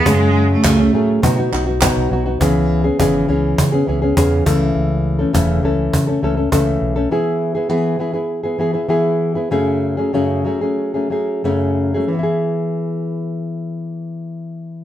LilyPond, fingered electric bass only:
\new Staff \with { instrumentName = "Fingered electric bass" } { \clef bass \time 4/4 \key e \major \tempo 4 = 102 fis,4 cis,8 a,8 b,8 b,,8. b,,16 b,,8 | cis,4 gis,,8 cis,8 cis8 cis,8 e,8 cis,8 | cis,4 e,,8 cis,8 cis8 cis,8 cis,8 b,,8 | r1 |
r1 | r1 | }